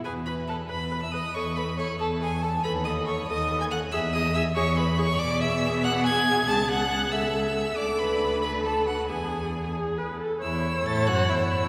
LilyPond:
<<
  \new Staff \with { instrumentName = "Violin" } { \time 6/8 \key e \major \tempo 4. = 93 gis''8 b''8 a''8 b''8. e'''16 dis'''8 | cis'''8 b''8 cis'''8 a''8 gis''8 a''8 | b''8 dis'''8 cis'''8 dis'''8. gis'''16 fis'''8 | e'''8 dis'''8 e'''8 cis'''8 b''8 cis'''8 |
\key a \major d'''8 e'''4 fis'''8 gis'''4 | a'''8 fis'''4 e'''4. | d'''8 b''4 b''8 a''8 fis''8 | gis''4. r4. |
e'''4 a'''8 fis'''8 e'''4 | }
  \new Staff \with { instrumentName = "Violin" } { \time 6/8 \key e \major gis'8 b'8 a'8 b'8. e''16 dis''8 | cis''8 b'8 cis''8 a'8 gis'8 a'8 | b'8 dis''8 cis''8 dis''8. gis''16 fis''8 | e''8 dis''8 e''8 cis''8 b'8 cis''8 |
\key a \major d''8 e''4 fis''8 gis''4 | a''8 fis''4 e''4. | d''8 b'4 b'8 a'8 fis'8 | gis'4. r4. |
e'4 a'8 fis'8 e'4 | }
  \new Staff \with { instrumentName = "Viola" } { \time 6/8 \key e \major b'8 b'8 b'8 b'8 b'8 b'8 | a'8 a'8 a'8 a'8 a'8 a'8 | a'8 a'8 a'8 a'8 a'8 a'8 | gis'8 gis'8 gis'8 gis'8 gis'8 gis'8 |
\key a \major gis'2.~ | gis'4. a'4. | a'4. a'4. | gis'4. gis'8 b'8 a'8 |
cis''2. | }
  \new Staff \with { instrumentName = "Cello" } { \clef bass \time 6/8 \key e \major e,4. e,4. | e,4. e,4. | dis,4. dis,4. | e,4. e,4. |
\key a \major b,2. | cis,2. | d,2. | e,2~ e,8 r8 |
e,4 a,8 fis,8 e,4 | }
>>